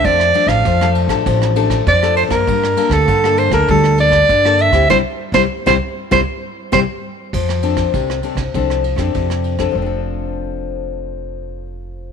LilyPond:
<<
  \new Staff \with { instrumentName = "Soprano saxophone" } { \time 4/4 \key f \major \tempo 4 = 99 d''8. f''8. r4. d''8 c''16 bes'16~ | bes'8. a'8. c''16 bes'16 a'8 d''4 e''8 | c''16 r8 c''16 r16 c''16 r8 c''16 r8. c''16 r8. | r1 |
r1 | }
  \new Staff \with { instrumentName = "Nylon-string guitar" } { \time 4/4 \key f \major << { <a d' a'>8 <a d' a'>8. <a d' a'>8 <a d' a'>8. <a d' a'>8 r16 <a d' a'>8 <bes d'>16~ | <bes d'>8 <bes d' a'>8. <bes d' a'>8 <bes d' a'>8. <bes d' a'>8. <bes d' a'>8 <c' e' g'>16 | <g c' e'>16 r8 <g c' e'>16 r16 <g c' e'>16 r8 <g c' e'>16 r8. <g c' e'>16 r8. | r8 <c' d' a'>4 <c' d' a'>16 r16 <c' d' a'>8 r16 <c' d' a'>4 <c' d' a'>16~ |
<c' d' a'>8 r2. r8 | } \\ { f4 f4 f4 f4 | g4 d4 g4 d4 | r1 | f4 c4 f4 c4 |
<f c' d' a'>1 | } >> }
  \new Staff \with { instrumentName = "Upright bass" } { \clef bass \time 4/4 \key f \major f,8 r16 a,,16 f,8. a,,16 a,,4 f,8. ges,16 | g,8 r16 d,16 g,8. d,16 d,4 g,8. d,16 | c,16 r8 c,16 r16 c,16 r8 c,16 r8. c,16 r8. | f,4 c,8 r16 c,16 c,8. f,16 f,4 |
f,,1 | }
  \new DrumStaff \with { instrumentName = "Drums" } \drummode { \time 4/4 <bd cymr>16 ss16 cymr16 <bd cymr ss>16 <bd cymr>16 ss16 cymr16 <bd cymr ss>16 <bd cymr>16 ss16 cymr16 <bd cymr ss>16 <bd cymr>16 ss16 cymr16 <bd cymr ss>16 | <bd cymr>16 ss16 cymr16 <bd cymr ss>16 <bd cymr>16 ss16 cymr16 <bd cymr ss>16 <bd cymr>16 ss16 cymr16 <bd cymr ss>16 <bd cymr>16 ss16 cymr16 <bd cymr ss>16 | <bd sn>8. <bd sn>16 r16 <bd sn>8. <bd sn>4 <bd sn>4 | <cymc bd>16 ss16 cymr16 <bd cymr ss>16 <bd cymr>16 ss16 cymr16 <bd cymr ss>16 <bd cymr>16 ss16 cymr16 <bd cymr ss>16 <bd cymr>16 ss16 cymr16 <bd cymr ss>16 |
r4 r4 r4 r4 | }
>>